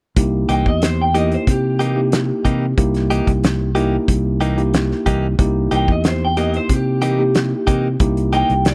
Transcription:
0.16 0.45 C2 loud
0.16 1.08 A#3 medium
0.16 1.08 D#4 medium
0.16 1.08 E4 medium
0.16 1.08 G4 medium
0.16 kick loud
0.16 closed hi-hat medium
0.49 0.63 C2 medium
0.49 0.70 E3 medium
0.49 0.70 A#3 medium
0.49 0.69 D#4 medium
0.49 0.69 G4 medium
0.49 0.67 G5 medium
0.49 closed hi-hat medium
0.66 1.36 E2 medium
0.66 0.83 D#5 medium
0.66 kick medium
0.82 0.99 C5 medium
0.82 snare loud
0.82 closed hi-hat medium
1.01 1.16 G5 medium
1.14 1.35 E3 soft
1.14 1.91 A#3 medium
1.14 1.35 A#3 medium
1.14 1.91 D#4 medium
1.14 1.35 D#4 medium
1.14 1.91 E4 medium
1.14 1.35 G4 medium
1.14 1.91 G4 medium
1.14 1.33 D#5 medium
1.14 closed hi-hat medium
1.32 1.48 C5 medium
1.32 closed hi-hat soft
1.47 2.31 C3 medium
1.47 2.75 G4 medium
1.47 kick medium
1.47 closed hi-hat medium
1.79 2.01 E3 soft
1.79 2.00 A#3 medium
1.79 2.00 D#4 medium
1.79 2.00 G4 medium
1.79 closed hi-hat medium
1.96 2.73 A#3 medium
1.96 2.72 D#4 medium
1.96 2.72 E4 medium
1.96 2.72 G4 medium
2.12 snare loud
2.12 closed hi-hat medium
2.45 2.73 C3 medium
2.45 2.66 E3 medium
2.45 2.65 A#3 medium
2.45 2.65 D#4 medium
2.45 2.65 G4 medium
2.45 kick medium
2.45 closed hi-hat medium
2.77 3.20 C2 medium
2.77 3.69 A#3 medium
2.77 3.70 D#4 medium
2.77 3.70 E4 medium
2.77 3.70 G4 medium
2.77 kick loud
2.77 closed hi-hat medium
2.94 snare soft
2.94 closed hi-hat soft
3.10 3.31 E3 medium
3.10 3.31 A#3 medium
3.10 3.31 D#4 medium
3.10 3.30 G4 medium
3.10 closed hi-hat medium
3.27 3.97 C2 medium
3.27 kick medium
3.27 closed hi-hat soft
3.44 snare loud
3.44 closed hi-hat medium
3.75 3.96 E3 medium
3.75 4.52 A#3 medium
3.75 3.96 A#3 medium
3.75 4.52 D#4 medium
3.75 3.96 D#4 medium
3.75 4.52 E4 medium
3.75 3.95 G4 medium
3.75 4.52 G4 medium
3.75 closed hi-hat medium
4.08 4.92 C2 medium
4.08 kick medium
4.08 closed hi-hat medium
4.41 4.62 E3 medium
4.41 4.61 A#3 medium
4.41 4.61 D#4 medium
4.41 4.61 G4 medium
4.41 closed hi-hat soft
4.57 5.34 A#3 medium
4.57 5.34 D#4 medium
4.57 5.34 E4 medium
4.57 5.34 G4 medium
4.57 closed hi-hat soft
4.74 snare loud
4.74 closed hi-hat medium
4.91 snare soft
5.06 5.34 C2 medium
5.06 5.27 E3 medium
5.06 5.27 A#3 medium
5.06 5.27 D#4 medium
5.06 5.26 G4 medium
5.06 kick medium
5.06 closed hi-hat medium
5.39 5.67 C2 loud
5.39 6.31 A#3 medium
5.39 6.31 D#4 medium
5.39 6.31 E4 medium
5.39 6.31 G4 medium
5.39 kick loud
5.39 closed hi-hat medium
5.71 5.86 C2 medium
5.71 5.92 E3 medium
5.71 5.92 A#3 medium
5.71 5.92 D#4 medium
5.71 5.92 G4 medium
5.71 5.90 G5 medium
5.71 closed hi-hat medium
5.88 6.58 E2 medium
5.88 6.06 D#5 medium
5.88 kick medium
6.04 6.22 C5 medium
6.04 snare loud
6.04 closed hi-hat medium
6.25 6.38 G5 medium
6.37 6.58 E3 medium
6.37 7.14 A#3 medium
6.37 6.58 A#3 medium
6.37 7.14 D#4 medium
6.37 6.57 D#4 medium
6.37 7.14 E4 medium
6.37 6.57 G4 medium
6.37 7.14 G4 medium
6.37 6.55 D#5 medium
6.37 closed hi-hat medium
6.54 6.71 C5 medium
6.54 closed hi-hat soft
6.69 7.53 C3 loud
6.69 kick medium
6.69 closed hi-hat medium
6.73 7.98 G4 medium
7.02 7.23 E3 medium
7.02 7.23 A#3 medium
7.02 7.22 D#4 medium
7.02 7.22 G4 medium
7.02 closed hi-hat medium
7.19 7.95 A#3 medium
7.19 7.95 D#4 medium
7.19 7.95 E4 medium
7.19 7.95 G4 medium
7.35 snare loud
7.35 closed hi-hat medium
7.67 7.96 C3 medium
7.67 7.88 E3 medium
7.67 7.88 A#3 medium
7.67 7.88 D#4 medium
7.67 7.87 G4 medium
7.67 kick medium
7.67 closed hi-hat medium
8.00 8.43 C2 medium
8.00 8.74 A#3 medium
8.00 8.74 D#4 medium
8.00 8.74 E4 medium
8.00 8.74 G4 medium
8.00 kick loud
8.00 closed hi-hat medium
8.17 closed hi-hat soft
8.33 8.54 E3 medium
8.33 8.53 A#3 medium
8.33 8.53 D#4 medium
8.33 8.53 G4 medium
8.33 8.66 G5 medium
8.33 closed hi-hat medium
8.50 8.74 C2 medium
8.50 closed hi-hat soft
8.65 8.74 D5 medium
8.65 snare loud
8.65 closed hi-hat medium

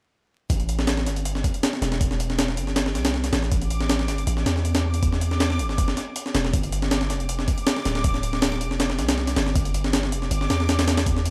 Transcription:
0.50 1.08 A1 medium
0.50 11.30 D6 medium
0.50 kick loud
0.50 closed hi-hat medium
0.60 closed hi-hat soft
0.69 closed hi-hat medium
0.79 snare medium
0.87 snare loud
0.87 closed hi-hat medium
0.97 snare soft
1.06 1.43 G1 medium
1.06 snare soft
1.06 closed hi-hat medium
1.16 closed hi-hat soft
1.25 closed hi-hat medium
1.35 snare soft
1.44 kick medium
1.44 closed hi-hat medium
1.54 closed hi-hat soft
1.63 snare loud
1.63 closed hi-hat medium
1.73 snare soft
1.82 2.59 E1 medium
1.82 snare medium
1.82 closed hi-hat medium
1.92 snare medium
2.01 kick loud
2.01 closed hi-hat medium
2.11 snare soft
2.20 closed hi-hat medium
2.30 snare soft
2.39 snare loud
2.39 closed hi-hat medium
2.48 snare soft
2.57 2.96 G1 medium
2.57 closed hi-hat medium
2.67 snare soft
2.76 snare loud
2.76 closed hi-hat medium
2.86 snare soft
2.95 3.31 C2 medium
2.95 snare soft
2.95 closed hi-hat medium
3.05 snare loud
3.05 closed hi-hat medium
3.14 snare soft
3.24 snare soft
3.24 closed hi-hat medium
3.33 4.10 A1 loud
3.33 snare loud
3.33 closed hi-hat medium
3.42 snare soft
3.52 kick loud
3.52 closed hi-hat medium
3.62 closed hi-hat soft
3.70 closed hi-hat medium
3.81 snare medium
3.90 snare loud
3.90 closed hi-hat medium
3.99 snare soft
4.08 4.25 G1 medium
4.08 snare soft
4.08 closed hi-hat medium
4.18 closed hi-hat soft
4.27 4.44 A1 loud
4.27 closed hi-hat medium
4.37 snare soft
4.46 5.61 E2 medium
4.46 snare loud
4.46 closed hi-hat medium
4.56 snare soft
4.65 closed hi-hat medium
4.75 snare loud
4.75 closed hi-hat medium
4.94 closed hi-hat medium
5.03 kick loud
5.03 closed hi-hat medium
5.12 snare soft
5.21 closed hi-hat medium
5.31 snare soft
5.40 snare loud
5.40 closed hi-hat medium
5.50 snare soft
5.59 5.96 G1 medium
5.59 closed hi-hat medium
5.69 snare soft
5.78 kick loud
5.78 closed hi-hat medium
5.88 snare medium
5.97 snare soft
5.97 closed hi-hat medium
6.16 closed hi-hat medium
6.26 snare soft
6.35 6.52 E1 medium
6.35 snare loud
6.35 closed hi-hat medium
6.45 snare soft
6.53 7.12 G1 loud
6.53 kick loud
6.53 closed hi-hat medium
6.63 closed hi-hat soft
6.72 closed hi-hat medium
6.82 snare medium
6.91 snare loud
6.91 closed hi-hat medium
7.01 snare medium
7.10 7.46 F1 medium
7.10 snare soft
7.10 closed hi-hat medium
7.20 closed hi-hat soft
7.29 closed hi-hat medium
7.39 snare soft
7.48 kick medium
7.48 closed hi-hat medium
7.58 closed hi-hat soft
7.67 snare loud
7.67 closed hi-hat medium
7.76 snare soft
7.85 8.62 D1 medium
7.85 snare medium
7.85 closed hi-hat medium
7.95 snare medium
8.04 kick loud
8.04 closed hi-hat medium
8.14 snare soft
8.23 closed hi-hat medium
8.33 snare soft
8.42 snare loud
8.42 closed hi-hat medium
8.52 snare soft
8.61 9.00 F1 medium
8.61 closed hi-hat medium
8.71 snare soft
8.80 snare loud
8.80 closed hi-hat medium
8.90 snare soft
8.99 9.35 C2 medium
8.99 snare soft
8.99 closed hi-hat medium
9.09 snare loud
9.09 closed hi-hat medium
9.18 snare soft
9.27 snare soft
9.27 closed hi-hat medium
9.36 10.14 G1 medium
9.36 snare loud
9.36 closed hi-hat medium
9.46 snare soft
9.56 kick loud
9.56 closed hi-hat medium
9.65 closed hi-hat soft
9.74 closed hi-hat medium
9.84 snare medium
9.93 snare loud
9.93 closed hi-hat medium
10.03 snare soft
10.12 10.29 F1 medium
10.12 closed hi-hat medium
10.22 snare soft
10.31 10.48 G1 loud
10.31 closed hi-hat medium
10.41 snare soft
10.50 11.30 E2 medium
10.50 snare loud
10.50 closed hi-hat medium
10.60 snare soft
10.69 snare loud
10.69 closed hi-hat medium
10.79 snare loud
10.79 closed hi-hat medium
10.88 snare loud
10.88 closed hi-hat medium
10.97 snare loud
10.97 closed hi-hat medium
11.06 kick loud
11.06 closed hi-hat medium
11.16 snare soft
11.26 closed hi-hat medium

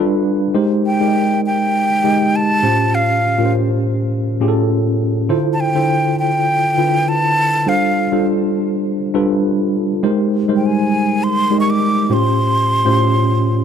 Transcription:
0.00 0.46 G3 medium
0.00 0.46 D4 medium
0.00 0.46 F4 medium
0.00 0.46 A4 medium
0.00 0.46 B4 loud
0.54 0.92 G#3 medium
0.54 0.92 D#4 medium
0.54 0.92 G4 medium
0.54 0.93 A#4 medium
0.54 0.93 C5 medium
0.86 1.41 G5 medium
1.00 1.87 G#3 medium
1.00 1.87 D#4 medium
1.00 1.87 G4 medium
1.00 1.87 A#4 medium
1.00 1.07 D5 medium
1.08 1.91 D#5 medium
1.46 2.37 G5 medium
2.04 2.63 G#3 medium
2.04 2.63 D#4 medium
2.04 2.62 G4 medium
2.04 2.63 A#4 medium
2.04 2.64 D#5 medium
2.36 2.96 A5 loud
2.62 3.25 A2 medium
2.62 3.25 C#4 medium
2.62 3.25 F4 medium
2.62 3.25 G4 medium
2.62 3.25 C5 medium
2.95 3.53 F5 medium
3.38 4.24 A2 medium
3.38 4.25 C#4 medium
3.38 4.25 F4 medium
3.38 4.25 G4 medium
3.38 3.45 A#4 medium
3.45 4.28 C5 medium
4.40 5.16 A2 medium
4.40 5.16 C#4 medium
4.40 5.16 F4 medium
4.40 5.17 G4 medium
4.40 4.48 G#4 medium
4.48 5.20 A4 medium
5.29 5.67 D3 medium
5.29 5.67 E4 medium
5.29 5.67 F4 medium
5.29 5.67 A4 medium
5.29 5.68 C5 medium
5.53 5.62 A5 medium
5.60 6.19 G5 medium
5.75 6.62 D3 medium
5.75 6.62 E4 medium
5.75 6.62 F4 medium
5.75 6.62 A4 medium
5.75 6.62 C5 medium
6.19 7.10 G5 loud
6.77 7.53 D3 medium
6.77 7.53 E4 medium
6.77 7.53 F4 medium
6.77 7.53 A4 medium
6.77 7.54 B4 medium
7.08 7.70 A5 loud
7.66 8.04 G3 medium
7.66 8.04 D4 medium
7.66 8.04 F4 medium
7.66 8.05 A4 medium
7.66 8.05 C5 medium
7.66 8.27 F5 loud
8.12 8.98 G3 medium
8.12 8.98 D4 medium
8.12 8.98 F4 medium
8.12 8.99 A4 medium
8.12 8.99 C5 medium
9.14 9.90 G3 medium
9.14 9.90 D4 medium
9.14 9.90 F4 medium
9.14 9.90 A4 medium
9.14 9.90 B4 medium
10.03 10.41 G#3 medium
10.03 10.41 D#4 medium
10.03 10.41 G4 medium
10.03 10.41 A#4 medium
10.03 10.41 C5 medium
10.48 11.35 G3 medium
10.48 11.35 G#3 medium
10.48 11.35 D#4 medium
10.48 11.35 A#4 medium
10.48 11.35 C5 medium
10.56 10.67 G5 medium
10.66 11.25 G#5 medium
11.23 11.60 C6 loud
11.50 12.10 G#3 medium
11.50 12.10 D#4 medium
11.50 12.09 G4 medium
11.50 12.11 A#4 medium
11.50 11.58 D5 medium
11.58 12.14 D#5 medium
11.58 11.72 C#6 medium
11.70 12.15 D6 medium
12.09 12.72 A2 medium
12.09 12.72 C#4 medium
12.09 12.72 F4 medium
12.09 12.72 G4 medium
12.09 12.72 C5 medium
12.09 13.64 C6 loud
12.85 13.64 A2 medium
12.85 13.64 C#4 medium
12.85 13.64 F4 medium
12.85 13.64 G4 medium
12.85 13.64 C5 loud

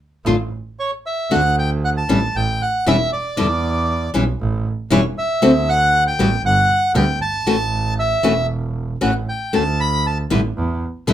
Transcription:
0.25 0.47 A1 medium
0.25 0.35 D3 medium
0.25 0.35 A3 medium
0.25 0.35 D4 medium
0.25 0.35 F4 medium
0.79 0.91 C#5 medium
1.06 1.32 E5 medium
1.31 2.05 D2 loud
1.31 1.40 D3 medium
1.31 1.40 A3 medium
1.31 1.40 D4 medium
1.31 1.40 F#4 medium
1.31 1.56 F#5 loud
1.59 1.70 G5 medium
1.85 1.90 F#5 medium
1.97 2.36 A5 medium
2.09 2.30 A1 medium
2.09 2.18 E3 medium
2.09 2.18 G3 loud
2.09 2.18 C#4 medium
2.09 2.18 E4 medium
2.35 2.56 A1 loud
2.35 2.62 G5 loud
2.62 2.85 F#5 medium
2.86 3.08 E1 medium
2.86 2.95 E3 loud
2.86 2.95 G3 medium
2.86 2.96 C#4 medium
2.86 2.96 E4 loud
2.86 3.11 E5 loud
3.13 4.10 D5 medium
3.37 4.10 E2 loud
3.37 3.46 B2 medium
3.37 3.46 D3 medium
3.37 3.46 G3 loud
3.37 3.46 B3 medium
3.37 3.46 E4 loud
4.14 4.36 B1 medium
4.14 4.23 E3 medium
4.14 4.23 G3 medium
4.14 4.23 C#4 medium
4.14 4.23 E4 loud
4.40 4.61 A1 loud
4.90 5.12 E1 medium
4.90 5.00 E3 loud
4.90 5.00 G3 loud
4.90 5.00 C#4 loud
4.90 5.00 E4 loud
4.90 5.03 C#5 medium
5.18 5.70 E5 medium
5.42 6.15 D2 medium
5.42 5.51 D3 medium
5.42 5.51 A3 medium
5.42 5.51 C4 loud
5.42 5.51 F#4 loud
5.69 6.04 F#5 loud
6.07 6.42 G5 loud
6.18 6.40 A1 loud
6.18 6.28 G3 medium
6.18 6.28 B3 loud
6.18 6.28 F#4 loud
6.43 6.65 G1 loud
6.43 6.92 F#5 loud
6.95 7.16 D2 loud
6.95 7.04 G3 medium
6.95 7.04 B3 loud
6.95 7.04 F#4 loud
6.95 7.19 G5 loud
7.21 7.45 G1 medium
7.21 7.94 A5 loud
7.46 8.19 A1 medium
7.46 7.55 E3 medium
7.46 7.55 A3 medium
7.46 7.55 C#4 medium
7.46 7.55 F#4 medium
7.99 8.46 E5 medium
8.23 8.97 E1 medium
8.23 8.32 E3 medium
8.23 8.32 A3 medium
8.23 8.33 C#4 medium
8.23 8.33 F#4 loud
9.01 9.23 A1 medium
9.01 9.10 E3 medium
9.01 9.10 A3 medium
9.01 9.10 C#4 medium
9.01 9.10 F#4 medium
9.01 9.14 F#5 medium
9.29 9.55 G5 medium
9.53 10.27 D2 medium
9.53 9.62 D3 medium
9.53 9.62 A3 medium
9.53 9.62 C#4 medium
9.53 9.62 F#4 medium
9.53 9.80 A5 loud
9.80 10.06 B5 loud
10.07 10.18 A5 medium
10.30 10.52 A1 loud
10.30 10.39 B2 medium
10.30 10.39 D3 loud
10.30 10.40 G3 medium
10.30 10.40 B3 medium
10.30 10.40 E4 medium
10.56 10.78 E2 loud
11.07 11.13 B1 medium
11.07 11.13 B2 medium
11.07 11.13 D3 medium
11.07 11.13 G3 medium
11.07 11.13 B3 loud
11.07 11.13 E4 loud
11.07 11.13 E5 medium

